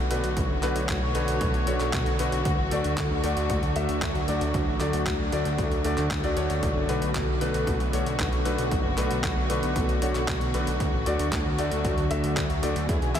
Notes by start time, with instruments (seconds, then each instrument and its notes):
Already playing: string section D3 A3 B3 F#4
0.11 analog synth bass B1, grand piano A3 D4 F#4 B4, closed hi-hat
0.24 analog synth bass B1, closed hi-hat
0.37 analog synth bass B1, string section C#5, kick, closed hi-hat
0.50 analog synth bass F#1
0.63 analog synth bass B1, grand piano A3 D4 F#4 B4, clap, closed hi-hat
0.76 analog synth bass B1, closed hi-hat
0.89 analog synth bass B1, kick, clap, closed hi-hat
1.02 analog synth bass B1
1.15 analog synth bass B1, grand piano A3 D4 F#4 B4, closed hi-hat
1.28 analog synth bass B1, closed hi-hat
1.41 analog synth bass B1, kick, closed hi-hat
1.54 analog synth bass B1, closed hi-hat
1.67 analog synth bass B1, grand piano A3 D4 F#4 C#5, closed hi-hat
1.80 analog synth bass B1, clap, closed hi-hat
1.93 analog synth bass B1, kick, clap, closed hi-hat
2.06 analog synth bass B1, closed hi-hat
2.19 analog synth bass B1, grand piano A3 D4 F#4 B4, closed hi-hat
2.32 analog synth bass B1, closed hi-hat
2.45 analog synth bass D2, string section F#3, kick, closed hi-hat
2.58 analog synth bass A1
2.71 analog synth bass D2, grand piano A3 D4 F#4 D5, closed hi-hat
2.84 analog synth bass D2, closed hi-hat
2.97 analog synth bass D2, kick, clap, closed hi-hat
3.11 analog synth bass D2
3.24 analog synth bass D2, grand piano A3 D4 F#4 D5, closed hi-hat
3.37 analog synth bass D2, closed hi-hat
3.50 analog synth bass D2, kick, closed hi-hat
3.63 analog synth bass D2, closed hi-hat
3.76 analog synth bass D2, grand piano A3 D4 F#4 E5, closed hi-hat
3.89 analog synth bass D2, closed hi-hat
4.02 analog synth bass D2, kick, clap, closed hi-hat
4.15 analog synth bass D2, closed hi-hat
4.28 analog synth bass D2, grand piano A3 D4 F#4 D5, closed hi-hat
4.41 analog synth bass D2, closed hi-hat
4.54 analog synth bass D2, kick, closed hi-hat
4.67 analog synth bass A1
4.80 analog synth bass D2, grand piano A3 D4 F#4 D5, clap, closed hi-hat
4.93 analog synth bass D2, closed hi-hat
5.06 analog synth bass D2, kick, clap, closed hi-hat
5.19 analog synth bass D2
5.32 analog synth bass D2, grand piano A3 D4 F#4 D5, closed hi-hat
5.45 analog synth bass D2, closed hi-hat
5.58 analog synth bass D2, kick, closed hi-hat
5.72 analog synth bass D2, closed hi-hat
5.84 analog synth bass D2, grand piano A3 D4 F#4 D5, closed hi-hat
5.98 analog synth bass D2, clap, closed hi-hat
6.11 analog synth bass D2, kick, clap, closed hi-hat
6.24 analog synth bass D2, grand piano A3 D4 F#4 D5, closed hi-hat
6.37 analog synth bass D2, grand piano A3 D4 F#4 C#5, closed hi-hat
6.50 analog synth bass D2, closed hi-hat
6.63 analog synth bass B1, string section B3 F#4, kick, closed hi-hat
6.76 analog synth bass F#1
6.89 analog synth bass B1, grand piano A3 D4 F#4 B4, closed hi-hat
7.02 analog synth bass B1, closed hi-hat
7.15 analog synth bass B1, kick, clap, closed hi-hat
7.28 analog synth bass B1
7.41 analog synth bass B1, grand piano A3 D4 F#4 B4, closed hi-hat
7.54 analog synth bass B1, closed hi-hat
7.67 analog synth bass B1, kick, closed hi-hat
7.80 analog synth bass B1, closed hi-hat
7.93 analog synth bass B1, grand piano A3 D4 F#4 C#5, closed hi-hat
8.06 analog synth bass B1, closed hi-hat
8.19 analog synth bass B1, kick, clap, closed hi-hat
8.32 analog synth bass B1, closed hi-hat
8.45 analog synth bass B1, grand piano A3 D4 F#4 B4, closed hi-hat
8.58 analog synth bass B1, closed hi-hat
8.71 analog synth bass B1, kick, closed hi-hat
8.85 analog synth bass F#1
8.98 analog synth bass B1, grand piano A3 D4 F#4 B4, clap, closed hi-hat
9.11 analog synth bass B1, closed hi-hat
9.24 analog synth bass B1, kick, clap, closed hi-hat
9.37 analog synth bass B1
9.50 analog synth bass B1, grand piano A3 D4 F#4 B4, closed hi-hat
9.63 analog synth bass B1, closed hi-hat
9.76 analog synth bass B1, kick, closed hi-hat
9.89 analog synth bass B1, closed hi-hat
10.02 analog synth bass B1, grand piano A3 D4 F#4 C#5, closed hi-hat
10.15 analog synth bass B1, clap, closed hi-hat
10.28 analog synth bass B1, kick, clap, closed hi-hat
10.41 analog synth bass B1, closed hi-hat
10.54 analog synth bass B1, grand piano A3 D4 F#4 B4, closed hi-hat
10.67 analog synth bass B1, closed hi-hat
10.80 analog synth bass D2, string section D3 F#3 A3, kick, closed hi-hat
10.93 analog synth bass A1
11.06 analog synth bass D2, grand piano A3 D4 F#4 D5, closed hi-hat
11.19 analog synth bass D2, closed hi-hat
11.32 analog synth bass D2, kick, clap, closed hi-hat
11.46 analog synth bass D2
11.58 analog synth bass D2, grand piano A3 D4 F#4 D5, closed hi-hat
11.72 analog synth bass D2, closed hi-hat
11.85 analog synth bass D2, kick, closed hi-hat
11.98 analog synth bass D2, closed hi-hat
12.11 analog synth bass D2, grand piano A3 D4 F#4 E5, closed hi-hat
12.24 analog synth bass D2, closed hi-hat
12.37 analog synth bass D2, kick, clap, closed hi-hat
12.50 analog synth bass D2, closed hi-hat
12.63 analog synth bass D2, grand piano A3 D4 F#4 D5, closed hi-hat
12.76 analog synth bass D2, closed hi-hat
12.89 analog synth bass E2, string section E3 G#3 B3 G#4, kick, closed hi-hat
13.02 analog synth bass B1, closed hi-hat
13.15 analog synth bass E2, grand piano B3 E4 G#4 E5, clap, closed hi-hat